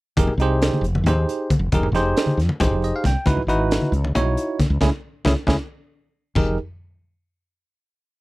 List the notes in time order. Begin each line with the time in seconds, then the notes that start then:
0.17 F1 D#4 G4 G#4 A#4, kick, closed hi-hat, muted conga
0.27 low conga
0.38 C2 D#4 G4, closed hi-hat
0.42 G#4 C5
0.62 snare, closed hi-hat
0.73 high conga
0.81 F1, closed hi-hat, low conga
0.95 muted conga
1.04 D#2 D#4 G4, closed hi-hat, low conga
1.08 G#4 C5
1.29 closed hi-hat, low conga
1.50 muted fretless electric bass stroke, kick, closed hi-hat, high conga
1.59 F1
1.72 F1 D#4 G4 G#4 A#4, kick, closed hi-hat, muted conga
1.83 low conga
1.92 F1 D#4 G4 G#4, snare, closed hi-hat
1.96 C5
2.17 snare, closed hi-hat
2.26 muted fretless electric bass stroke, high conga
2.37 F2, snare, closed hi-hat, low conga
2.49 muted conga
2.60 G#1 D#4 G4 G#4 C5, kick, snare, closed hi-hat, low conga
2.71 F1
2.82 D#5, closed hi-hat, low conga
2.96 F5
3.04 C2 G5, kick, snare, closed hi-hat, high conga
3.26 C#2 D#4 E4 F#4 B4, kick, closed hi-hat, muted conga
3.37 low conga
3.47 G#1 D#4 E4 F#4 B4, closed hi-hat
3.71 snare, closed hi-hat
3.82 high conga
3.92 C#2, closed hi-hat, low conga
4.04 muted conga
4.15 B1 D#4 E4 F#4 C#5, closed hi-hat, low conga
4.37 closed hi-hat, low conga
4.59 muted fretless electric bass stroke, kick, snare, closed hi-hat, high conga
4.70 C#2
4.81 C#2 C#4 E4 G#4, kick, snare, muted conga
5.25 C#2 C#4 E4 G#4, kick, snare, muted conga
5.47 C#2 C#4 E4 G#4, kick, snare, muted conga
6.35 F1 D#4 G4 G#4 A#4, kick, floor tom, crash, muted conga